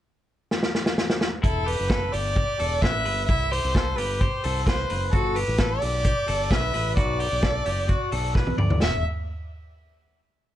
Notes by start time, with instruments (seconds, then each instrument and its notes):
0.51 snare
0.63 snare
0.75 snare
0.86 snare
0.98 snare
1.10 snare
1.21 snare
1.43 picked electric bass E1, clean electric guitar E4, violin A4, kick, closed hi-hat
1.66 clean electric guitar G4, violin B4, open hi-hat
1.79 picked electric bass F#1
1.89 clean electric guitar A4, kick, snare, closed hi-hat
2.12 picked electric bass G1, clean electric guitar G4, violin D5, open hi-hat
2.36 clean electric guitar G4, kick, closed hi-hat
2.60 picked electric bass E1, clean electric guitar A4, open hi-hat
2.82 picked electric bass A1, clean electric guitar B4, violin E5, kick, snare, closed hi-hat
3.05 picked electric bass G1, clean electric guitar B4, open hi-hat
3.27 picked electric bass C2, clean electric guitar E4, violin E5, kick, closed hi-hat
3.52 clean electric guitar G4, violin C5, open hi-hat
3.64 picked electric bass C2
3.75 clean electric guitar A4, kick, snare, closed hi-hat
3.96 picked electric bass G1, clean electric guitar G4, violin B4, open hi-hat
4.20 clean electric guitar G4, violin C5, kick, closed hi-hat
4.44 picked electric bass C2, clean electric guitar A4, open hi-hat
4.66 clean electric guitar B4, violin C5, kick, snare, closed hi-hat
4.90 picked electric bass F#1, clean electric guitar B4, open hi-hat
5.12 picked electric bass G1, clean electric guitar F#4, violin A4, kick, closed hi-hat
5.35 clean electric guitar G4, violin B4, open hi-hat
5.48 picked electric bass A1
5.58 clean electric guitar A4, kick, snare, closed hi-hat
5.80 picked electric bass B1, clean electric guitar G4, violin D5, open hi-hat
6.05 clean electric guitar G4, kick, closed hi-hat
6.28 picked electric bass G1, clean electric guitar A4, open hi-hat
6.51 picked electric bass B1, clean electric guitar B4, violin E5, kick, snare, closed hi-hat
6.74 picked electric bass A1, clean electric guitar B4, open hi-hat
6.97 picked electric bass B1, clean electric guitar F#4, violin D5, kick, closed hi-hat
7.20 clean electric guitar G4, open hi-hat
7.32 picked electric bass B1
7.43 clean electric guitar A4, kick, snare, closed hi-hat
7.66 picked electric bass F#1, clean electric guitar G4, open hi-hat
7.89 clean electric guitar F#4, kick, closed hi-hat
8.12 picked electric bass B1, clean electric guitar A4, open hi-hat
8.35 clean electric guitar B4, kick, snare
8.47 high tom
8.58 picked electric bass D2, clean electric guitar D5, mid tom
8.70 floor tom
8.81 picked electric bass E1, clean electric guitar E5, violin E5, snare, splash